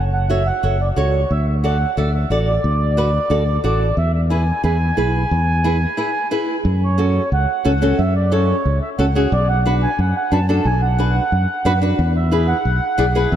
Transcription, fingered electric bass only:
0.00 0.50 F#1 medium
0.63 0.90 F#1 medium
0.97 1.23 C#2 medium
1.31 1.84 D2 medium
1.97 2.24 D2 medium
2.30 2.57 A1 medium
2.64 3.17 D2 loud
3.30 3.57 D2 medium
3.64 3.91 A1 medium
3.97 4.51 E2 loud
4.64 4.91 E2 medium
4.97 5.24 B1 medium
5.31 5.85 E2 loud
6.65 7.18 F#2 loud
7.32 7.45 C#2 medium
7.65 7.92 C#2 medium
7.99 8.52 F#2 loud
8.65 8.79 C#2 medium
8.99 9.25 C#2 medium
9.32 9.85 B1 loud
9.99 10.12 F#2 loud
10.32 10.59 F#2 medium
10.65 11.19 B1 loud
11.32 11.46 F#2 medium
11.65 11.92 F#2 medium
11.99 12.52 E2 loud
12.65 12.79 B1 medium
12.98 13.25 B1 medium
13.32 13.36 E2 loud

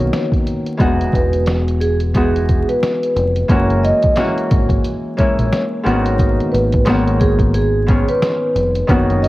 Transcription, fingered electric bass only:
0.80 1.06 E1 loud
1.13 2.64 E1 loud
3.16 3.42 F1 medium
3.50 3.91 F#1 loud
4.51 4.77 G#1 medium
5.39 5.49 A#1 medium
5.86 6.38 G#1 loud
6.53 8.04 G#1 loud
8.55 8.81 F1 medium
8.89 9.28 F#1 loud

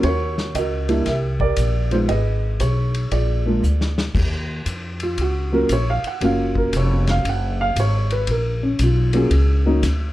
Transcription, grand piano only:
0.04 0.56 F#4 medium
0.04 0.56 A#4 medium
0.04 0.52 C#5 medium
0.55 1.04 F#4 medium
0.55 1.04 A#4 medium
0.55 1.03 D#5 medium
0.89 1.05 G3 medium
0.89 1.05 A#3 medium
0.89 1.05 D4 medium
0.89 1.05 E4 medium
1.06 1.41 G4 medium
1.06 1.41 A#4 medium
1.06 1.14 E5 medium
1.41 2.06 G4 medium
1.41 2.06 A#4 medium
1.41 1.94 D5 medium
1.91 2.07 G#3 medium
1.91 2.08 B3 soft
1.91 2.08 D#4 soft
1.91 2.08 F4 medium
1.91 1.97 C5 medium
2.09 2.60 G#4 medium
2.09 3.09 B4 medium
2.09 2.62 D#5 medium
2.61 3.09 G#4 medium
2.61 3.14 C#5 medium
3.12 3.46 F4 soft
3.12 4.12 G#4 soft
3.12 3.94 D5 medium
3.46 3.62 G#3 medium
3.46 3.62 A#3 medium
3.46 3.62 D4 soft
3.46 3.62 F4 medium
5.03 5.19 F4 medium
5.21 5.53 F#4 medium
5.52 5.68 F#3 medium
5.52 5.68 A#3 medium
5.52 5.68 C#4 medium
5.52 5.69 F4 medium
5.52 5.70 A#4 medium
5.73 5.88 C#5 medium
5.90 6.05 F5 medium
6.07 6.23 F#5 medium
6.21 7.66 F#3 medium
6.21 7.66 A#3 medium
6.21 7.66 C#4 medium
6.21 7.66 F4 medium
6.21 6.56 F5 medium
6.57 6.74 A#4 medium
6.77 7.08 C#5 medium
7.10 7.26 F5 medium
7.29 7.60 F#5 medium
7.61 7.77 F5 medium
7.80 8.11 C#5 medium
8.12 8.28 B4 medium
8.30 8.62 A#4 medium
8.63 8.80 C#4 medium
8.83 9.13 F4 medium
9.13 9.29 F#3 medium
9.13 9.29 A#3 medium
9.13 9.30 C#4 medium
9.13 9.30 F4 medium
9.13 9.63 G#4 medium
9.66 9.81 F#3 medium
9.66 9.81 A#3 medium
9.66 9.82 C#4 medium
9.66 9.82 D#4 medium

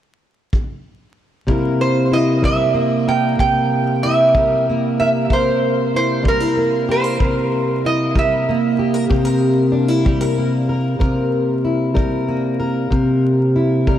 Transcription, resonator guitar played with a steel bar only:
1.81 2.13 C5 medium
2.13 2.45 D#5 medium
2.45 3.08 E5 medium
3.09 3.39 G5 medium
3.40 4.03 G5 loud
4.03 4.98 E5 medium
5.00 5.08 E5 medium
5.33 5.95 C5 medium
5.96 6.24 C5 medium
6.28 6.86 A#4 medium
6.91 7.81 C5 medium
7.86 8.18 D#5 medium
8.19 8.84 E5 medium

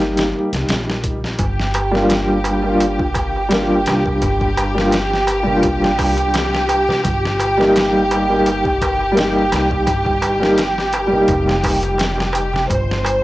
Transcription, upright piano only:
0.00 1.36 G3 medium
0.00 1.37 A#3 medium
0.00 1.39 D#4 medium
0.00 1.41 G4 medium
1.91 2.59 G3 medium
1.91 2.60 A#3 medium
1.91 2.60 D4 medium
1.96 2.61 F4 medium
2.63 2.94 G3 medium
2.63 2.94 A#3 medium
2.63 2.95 D4 medium
2.68 2.96 F4 medium
3.49 4.70 G3 medium
3.49 4.72 A#3 medium
3.55 4.74 D4 medium
3.55 4.75 F4 medium
4.75 4.93 G3 medium
4.75 4.94 A#3 medium
4.75 4.95 D4 medium
4.80 4.96 F4 medium
5.43 7.01 G3 medium
5.43 7.02 A#3 medium
5.50 7.04 D4 medium
5.50 7.06 F4 medium
7.57 8.24 G3 medium
7.57 8.25 A#3 medium
7.57 8.26 D#4 medium
7.62 8.27 G4 medium
8.29 8.59 G3 medium
8.29 8.59 A#3 medium
8.29 8.60 D#4 medium
8.33 8.61 G4 medium
9.12 10.34 G3 medium
9.12 10.36 A#3 medium
9.18 10.38 D#4 medium
9.18 10.39 G4 medium
10.40 10.58 G3 medium
10.40 10.59 A#3 medium
10.40 10.59 D#4 medium
10.44 10.60 G4 medium
11.07 12.65 G3 medium
11.07 12.67 A#3 medium
11.13 12.68 D#4 medium
11.13 12.70 G4 medium

